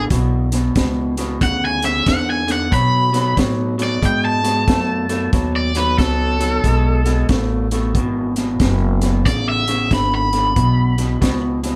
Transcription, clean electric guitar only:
0.11 0.48 E2 medium
0.11 0.49 B2 medium
0.53 0.74 E2 medium
0.53 0.74 B2 medium
0.77 1.14 E2 medium
0.77 1.14 B2 medium
1.18 1.39 E2 medium
1.18 1.39 B2 medium
1.42 1.79 E2 medium
1.42 1.79 C#3 medium
1.84 2.05 E2 medium
1.84 2.05 C#3 medium
2.07 2.44 E2 medium
2.07 2.45 D3 medium
2.48 2.69 E2 medium
2.48 2.69 D3 medium
2.71 3.09 B2 medium
2.71 3.09 F#3 medium
3.13 3.35 B2 medium
3.13 3.35 F#3 medium
3.37 3.75 B2 medium
3.37 3.75 F#3 medium
3.78 4.00 B2 medium
3.78 4.00 F#3 medium
4.02 4.40 B2 medium
4.02 4.40 G#3 medium
4.44 4.65 B2 medium
4.44 4.66 G#3 medium
4.67 5.05 B2 medium
4.67 5.05 A3 medium
5.09 5.31 B2 medium
5.09 5.31 A3 medium
5.33 5.71 B2 medium
5.33 5.71 F#3 medium
5.76 5.97 B2 medium
5.76 5.97 F#3 medium
5.99 6.36 B2 medium
5.99 6.36 F#3 medium
6.40 6.61 B2 medium
6.40 6.62 F#3 medium
6.64 7.01 B2 medium
6.64 7.02 G#3 medium
7.06 7.27 B2 medium
7.06 7.28 G#3 medium
7.30 7.67 B2 medium
7.30 7.67 A3 medium
7.72 7.93 B2 medium
7.72 7.93 A3 medium
7.96 8.33 E2 medium
7.96 8.33 B2 medium
8.37 8.58 E2 medium
8.37 8.59 B2 medium
8.62 8.98 E2 medium
8.62 8.99 B2 medium
9.03 9.24 E2 medium
9.03 9.24 B2 medium
9.26 9.63 E2 medium
9.26 9.64 C#3 medium
9.68 9.89 E2 medium
9.68 9.89 C#3 medium
9.91 10.28 E2 medium
9.91 10.29 D3 medium
10.33 10.54 E2 medium
10.33 10.55 D3 medium
10.56 10.94 E2 medium
10.56 10.94 B2 medium
10.98 11.19 E2 medium
10.98 11.20 B2 medium
11.21 11.59 E2 medium
11.21 11.59 B2 medium
11.63 11.76 E2 medium
11.63 11.76 B2 medium

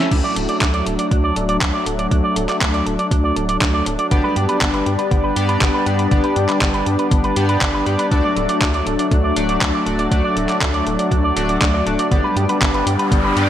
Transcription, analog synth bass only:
0.11 0.22 D2 loud
0.36 0.47 D1 loud
0.61 0.82 D2 medium
0.86 0.97 D1 medium
1.11 1.32 D2 medium
1.36 1.57 D1 medium
1.61 1.72 D2 medium
1.86 2.07 D1 medium
2.11 2.22 D2 loud
2.36 2.47 D1 loud
2.61 2.82 D2 medium
2.86 2.97 D1 medium
3.11 3.32 D2 medium
3.36 3.57 D1 medium
3.61 3.82 D2 medium
3.86 3.97 D1 medium
4.11 4.22 G1 medium
4.36 4.47 G2 loud
4.61 4.82 G1 medium
4.86 4.97 G2 medium
5.11 5.32 G1 medium
5.36 5.57 G2 medium
5.61 5.72 G1 medium
5.86 6.07 G2 medium
6.11 6.22 G1 loud
6.36 6.47 G2 loud
6.61 6.83 G1 medium
6.86 6.97 G2 medium
7.11 7.32 G1 medium
7.36 7.58 G2 medium
7.61 7.82 G1 medium
7.86 7.97 G2 medium
8.11 8.22 D2 loud
8.36 8.47 D1 loud
8.61 8.82 D2 medium
8.86 8.97 D1 medium
9.11 9.32 D2 medium
9.36 9.57 D1 medium
9.62 9.72 D2 medium
9.86 10.07 D1 medium
10.11 10.22 D2 loud
10.36 10.47 D1 loud
10.61 10.82 D2 medium
10.86 10.97 D1 medium
11.11 11.32 D2 medium
11.36 11.57 D1 loud
11.61 11.82 D2 medium
11.86 11.97 D1 medium
12.11 12.22 G1 loud
12.36 12.47 G2 loud
12.61 12.82 G1 medium
12.86 12.97 G2 medium
13.11 13.32 G1 medium
13.36 13.49 G2 medium

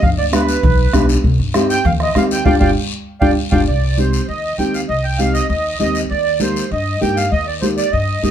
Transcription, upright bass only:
0.03 0.15 G1 medium
0.18 0.55 D2 medium
0.63 0.88 B1 loud
0.94 1.18 B1 loud
1.24 1.36 C2 medium
1.39 1.76 G2 medium
1.85 2.09 D#2 loud
2.15 2.40 D#2 medium
2.46 2.57 G1 medium
2.61 2.72 G1 medium
3.22 3.33 G1 medium
3.52 3.64 G1 medium
3.68 4.16 C2 medium
4.29 4.53 D#2 medium
4.58 4.83 D#2 medium
4.89 5.38 C2 medium
5.49 5.74 D#2 medium
5.80 6.04 D#2 medium
6.11 6.59 D#2 medium
6.71 6.96 G2 medium
7.02 7.26 G2 medium
7.32 7.81 D#2 medium
7.93 8.17 G2 medium
8.23 8.31 G2 medium

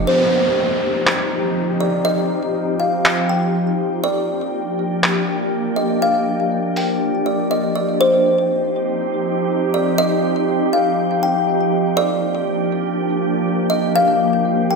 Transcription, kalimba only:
0.07 1.77 C5 medium
1.80 2.04 D5 medium
2.05 2.76 D#5 loud
2.80 3.26 F5 medium
3.29 4.00 G5 medium
4.04 5.73 D5 loud
5.76 6.00 D#5 medium
6.02 6.73 F5 medium
6.77 7.23 G5 medium
7.26 7.50 D5 medium
7.51 7.74 D#5 medium
7.75 7.99 D5 medium
8.01 9.70 C5 loud
9.74 9.98 D5 medium
9.98 10.69 D#5 loud
10.73 11.20 F5 medium
11.23 11.93 G5 medium
11.97 13.67 D5 loud
13.70 13.94 D#5 medium
13.96 14.66 F5 loud
14.71 14.76 G5 medium

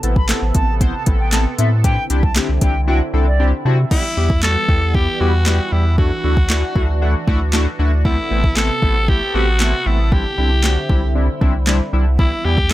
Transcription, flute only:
0.16 0.26 B5 medium
0.55 0.74 A5 medium
0.94 1.03 A5 medium
1.20 1.29 G5 medium
1.33 1.42 A5 medium
1.58 1.68 E5 medium
1.84 2.04 G5 loud
2.23 2.33 A5 medium
2.62 2.81 G5 medium
2.88 2.97 G5 medium
3.27 3.46 D5 medium

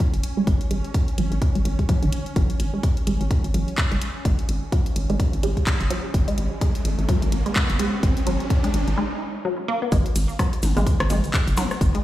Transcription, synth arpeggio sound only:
0.37 0.42 G#3 medium
0.71 0.75 G#3 medium
1.18 1.24 F#3 medium
1.55 1.60 G#3 medium
1.79 1.84 G#3 medium
1.89 1.95 F#3 loud
2.03 2.07 D#3 medium
2.36 2.43 F#3 medium
2.74 2.78 G#3 medium
3.07 3.11 G#3 medium
3.54 3.61 F#3 medium
3.92 3.96 G#3 medium
4.25 4.29 G#3 medium
4.72 4.79 F#3 medium
5.10 5.14 G#3 medium
5.43 5.47 G#3 medium
5.91 5.97 F#3 medium
6.28 6.32 G#3 medium
6.61 6.65 G#3 medium
7.09 7.15 F#3 medium
7.46 7.51 G#3 medium
7.79 7.83 G#3 medium
8.27 8.33 F#3 medium
8.64 8.69 G#3 medium
8.98 9.01 G#3 medium
9.45 9.54 F#3 medium
9.68 9.78 A#3 loud
9.82 9.85 B3 medium
9.92 9.96 G#3 medium
10.39 10.46 F#3 medium
10.77 10.81 G#3 medium
11.10 11.14 G#3 medium
11.57 11.64 F#3 medium
11.95 11.99 G#3 medium

